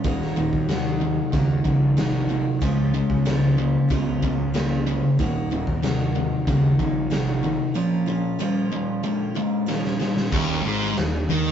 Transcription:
0.04 fingered electric bass D#1, distorted electric guitar D#2 A#2, steel-string acoustic guitar D#3 A#3 D#4 F#4, kick, closed hi-hat
0.22 snare
0.36 fingered electric bass D#1, distorted electric guitar D#2 A#2, steel-string acoustic guitar A#3 D#4 F#4
0.53 fingered electric bass D#2, kick
0.69 distorted electric guitar D#2 C3, steel-string acoustic guitar D#3 A#3 D#4 F#4, snare, closed hi-hat
1.00 distorted electric guitar D#2 C3
1.32 distorted electric guitar D#2 C#3, fingered electric bass D#2, steel-string acoustic guitar D#3 A#3 D#4 F#4, kick, closed hi-hat
1.64 fingered electric bass A#1, distorted electric guitar D#2 C#3, steel-string acoustic guitar A#3 D#4 F#4, kick
1.97 distorted electric guitar D#2 C3, steel-string acoustic guitar D#3 A#3 D#4 F#4, snare, closed hi-hat
2.29 distorted electric guitar D#2 C3, steel-string acoustic guitar A#3 D#4 F#4
2.61 fingered electric bass C#2, steel-string acoustic guitar C#3 F3 G#3 C#4 F4, distorted electric guitar C#3 G#3, kick, closed hi-hat
2.93 distorted electric guitar C#3 G#3, steel-string acoustic guitar G#3 C#4 F4
3.10 fingered electric bass C#2, kick
3.25 steel-string acoustic guitar C#3 F3 G#3 C#4 F4, distorted electric guitar C#3 A#3, snare, closed hi-hat
3.58 distorted electric guitar C#3 A#3
3.89 fingered electric bass C#2, distorted electric guitar C#3 B3, steel-string acoustic guitar F3 G#3 C#4 F4, kick, closed hi-hat
4.22 fingered electric bass C#2, distorted electric guitar C#3 B3, steel-string acoustic guitar G#3 C#4 F4, kick
4.54 steel-string acoustic guitar C#3 F3 G#3 C#4 F4, distorted electric guitar C#3 A#3, snare, closed hi-hat
4.87 distorted electric guitar C#3 A#3, steel-string acoustic guitar G#3 C#4 F4
5.19 fingered electric bass D#1, distorted electric guitar D#2 A#2, steel-string acoustic guitar D#3 A#3 D#4 F#4, kick, closed hi-hat
5.50 fingered electric bass D#1, distorted electric guitar D#2 A#2, steel-string acoustic guitar A#3 D#4 F#4
5.67 fingered electric bass D#2, kick
5.83 distorted electric guitar D#2 C3, steel-string acoustic guitar D#3 A#3 D#4 F#4, snare, closed hi-hat
6.15 distorted electric guitar D#2 C3
6.47 fingered electric bass D#2, distorted electric guitar D#2 C#3, steel-string acoustic guitar D#3 A#3 D#4 F#4, kick, closed hi-hat
6.79 fingered electric bass A#1, distorted electric guitar D#2 C#3, steel-string acoustic guitar A#3 D#4 F#4, kick
7.10 distorted electric guitar D#2 C3, steel-string acoustic guitar D#3 A#3 D#4 F#4, snare, closed hi-hat
7.43 distorted electric guitar D#2 C3, steel-string acoustic guitar A#3 D#4 F#4
7.74 steel-string acoustic guitar A#2 F3 A#3 C#4 F4, distorted electric guitar A#2 F3
8.06 distorted electric guitar A#2 F3, steel-string acoustic guitar A#3 C#4 F4
8.39 steel-string acoustic guitar A#2 F3 A#3 C#4 F4, distorted electric guitar A#2 G3
8.72 distorted electric guitar A#2 G3
9.03 distorted electric guitar A#2 G#3, steel-string acoustic guitar F3 A#3 C#4 F4
9.34 distorted electric guitar A#2 G#3, steel-string acoustic guitar A#3 C#4 F4
9.66 steel-string acoustic guitar A#2 F3 A#3 C#4 F4, distorted electric guitar A#2 G3, snare
9.85 snare
9.98 distorted electric guitar A#2 G3, steel-string acoustic guitar A#3 C#4 F4, snare
10.17 snare
10.32 fingered electric bass D#1, distorted electric guitar D#2, kick, crash
10.65 fingered electric bass G#1, distorted electric guitar G#2
10.82 snare
10.97 fingered electric bass D#1, distorted electric guitar D#2, snare, closed hi-hat
11.29 fingered electric bass D#2, distorted electric guitar D#3
11.46 snare

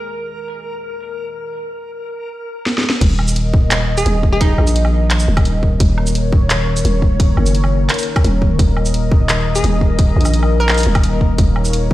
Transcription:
Already playing: analog synth pad D#3 A#3 G#4 D#5, synth texture A#4
2.66 snare
2.78 snare
2.81 snare
2.84 snare
2.90 snare
3.01 808-style bass D#1, analog synth pad D#3 A#3 A#4 D#5, kick, closed hi-hat, crash
3.19 low woodblock
3.28 shaker
3.36 closed hi-hat
3.54 kick
3.71 clap, closed hi-hat, shaker
3.98 synth pluck G#4, closed hi-hat, shaker
4.06 808-style bass D#1, closed hi-hat
4.23 kick
4.33 synth pluck G#4
4.41 synth pluck D#4, kick, closed hi-hat
4.58 808-style bass A#1, low woodblock
4.67 closed hi-hat, shaker
4.76 closed hi-hat
4.85 low woodblock
5.11 clap, closed hi-hat
5.20 shaker
5.28 808-style bass D#1
5.37 kick, closed hi-hat, low woodblock
5.45 closed hi-hat
5.63 kick
5.80 808-style bass D#1, analog synth pad C#5, kick, closed hi-hat
5.98 low woodblock
6.07 shaker
6.15 closed hi-hat
6.33 kick
6.50 clap, closed hi-hat, shaker
6.77 closed hi-hat, shaker
6.85 808-style bass D#1, closed hi-hat
7.02 kick
7.20 kick, closed hi-hat
7.37 808-style bass F#1, low woodblock
7.46 closed hi-hat, shaker
7.55 closed hi-hat
7.64 low woodblock
7.89 clap, closed hi-hat
7.94 closed hi-hat
7.99 closed hi-hat, shaker
8.03 closed hi-hat
8.16 kick, closed hi-hat, low woodblock
8.24 808-style bass D#1, closed hi-hat
8.42 kick
8.59 808-style bass D#1, analog synth pad D#5, kick, closed hi-hat
8.77 low woodblock
8.86 shaker
8.94 closed hi-hat
9.12 kick
9.29 clap, closed hi-hat, shaker
9.56 synth pluck G#4, closed hi-hat, shaker
9.64 808-style bass D#1, closed hi-hat
9.81 kick
9.99 kick, closed hi-hat
10.16 808-style bass A#1
10.21 closed hi-hat
10.25 low woodblock, shaker
10.34 closed hi-hat
10.43 low woodblock
10.60 synth pluck A#4
10.69 clap, closed hi-hat
10.72 closed hi-hat
10.74 closed hi-hat
10.78 closed hi-hat, shaker
10.80 closed hi-hat
10.83 808-style bass D#1, closed hi-hat
10.95 kick, closed hi-hat, low woodblock
11.03 closed hi-hat
11.21 kick
11.38 808-style bass D#1, analog synth pad C#5, kick, closed hi-hat
11.56 low woodblock
11.65 shaker
11.73 closed hi-hat

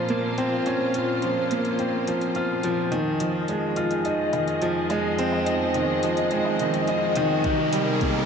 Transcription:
Already playing: cello section A#2, grand piano F3 A#3 C4 F4 A#4, string section A#3 F4 C5
0.09 grand piano A#3, closed hi-hat
0.38 grand piano C4, closed hi-hat
0.66 grand piano C#4, closed hi-hat
0.94 grand piano F4, closed hi-hat
1.22 grand piano F3, closed hi-hat
1.51 grand piano A#3, closed hi-hat
1.65 closed hi-hat
1.79 grand piano C4, closed hi-hat
2.07 grand piano F3, closed hi-hat
2.21 closed hi-hat
2.35 grand piano F4, closed hi-hat
2.63 grand piano F3, closed hi-hat
2.92 string section F2 F3 G#4 D#5, grand piano D#3, closed hi-hat, riser
3.20 grand piano F3, closed hi-hat
3.48 grand piano G#3, closed hi-hat
3.76 grand piano F4, closed hi-hat
3.91 closed hi-hat
4.05 grand piano D#4, closed hi-hat
4.33 grand piano D#3, closed hi-hat, low woodblock
4.48 closed hi-hat
4.62 grand piano F3, closed hi-hat
4.90 grand piano G#3, closed hi-hat, low woodblock
5.19 grand piano C4, closed hi-hat
5.32 low woodblock
5.46 grand piano D#4, closed hi-hat
5.74 grand piano D#3, closed hi-hat
6.03 grand piano F3, closed hi-hat
6.17 closed hi-hat
6.31 grand piano G#3, closed hi-hat
6.45 low woodblock
6.59 grand piano D#3, closed hi-hat
6.74 closed hi-hat
6.88 grand piano D#4, closed hi-hat
7.16 grand piano D#3, closed hi-hat
7.44 string section C3 G3 A#4, grand piano D#3, kick, closed hi-hat
7.73 grand piano G3, closed hi-hat
8.01 grand piano A#3, kick, closed hi-hat

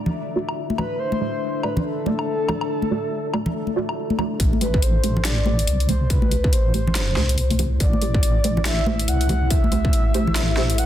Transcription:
Already playing: ambient pad D4 A4 E5
0.06 low conga
0.36 synth stab A3 F#4 D5
0.49 low woodblock
0.70 high conga
0.78 synth stab A3 F#4 D5, soft synth lead B4, low conga, low woodblock
0.99 ambient pad A4, soft synth lead C5
1.12 high conga
1.21 synth stab A3 F#4 D5
1.63 synth stab A3 F#4 D5, soft synth lead B4, low woodblock
1.77 low conga
1.85 soft synth lead A4
2.06 synth stab A3 F#4 D5, high conga
2.19 low woodblock
2.49 synth stab A3 F#4 D5, low conga, low woodblock
2.61 low woodblock
2.82 high conga
2.91 synth stab A3 F#4 D5
3.34 synth stab A3 F#4 D5, low woodblock
3.46 low conga
3.67 high conga
3.76 synth stab A3 F#4 D5
3.89 low woodblock
4.10 high conga
4.19 synth stab A3 F#4 D5, low conga, low woodblock
4.40 wobble bass A1, ambient pad A3 E4 A4, kick, closed hi-hat
4.53 high conga
4.61 synth stab A3 G4 C5, soft synth lead B4, closed hi-hat
4.74 kick
4.82 soft synth lead C5, closed hi-hat
5.04 synth stab A3 G4 C5, closed hi-hat
5.17 low conga
5.25 soft synth lead D5, snare, closed hi-hat
5.46 synth stab A3 G4 C5, high conga
5.59 closed hi-hat
5.67 wobble bass C2, closed hi-hat
5.80 closed hi-hat
5.89 synth stab A3 G4 C5, soft synth lead C5, closed hi-hat, low conga
6.10 soft synth lead B4, kick, closed hi-hat
6.22 high conga
6.31 synth stab A3 G4 C5, closed hi-hat
6.44 kick
6.53 wobble bass A1, soft synth lead C5, closed hi-hat
6.74 synth stab A3 G4 C5, closed hi-hat
6.87 low conga
6.95 snare, closed hi-hat
7.17 wobble bass C2, synth stab A3 G4 C5, snare
7.29 closed hi-hat
7.38 closed hi-hat
7.50 closed hi-hat, high conga
7.59 synth stab A3 G4 C5, closed hi-hat, low conga
7.80 wobble bass A1, ambient pad A4, soft synth lead D5, kick, closed hi-hat
7.93 high conga
8.02 synth stab A3 G4 C5, closed hi-hat
8.14 kick
8.23 closed hi-hat
8.44 synth stab A3 G4 C5, closed hi-hat
8.57 low conga
8.65 soft synth lead E5, snare, closed hi-hat
8.87 synth stab A3 G4 C5, high conga
8.99 closed hi-hat
9.08 wobble bass C2, soft synth lead F#5, closed hi-hat
9.21 closed hi-hat
9.29 synth stab A3 G4 C5, closed hi-hat, low conga
9.50 soft synth lead E5, kick, closed hi-hat
9.64 high conga
9.72 synth stab A3 G4 C5, closed hi-hat
9.85 kick
9.93 wobble bass A1, closed hi-hat
10.14 synth stab A3 G4 C5, closed hi-hat
10.27 low conga
10.36 snare, closed hi-hat
10.57 synth stab A3 G4 C5, snare
10.70 closed hi-hat
10.78 soft synth lead F#5, closed hi-hat

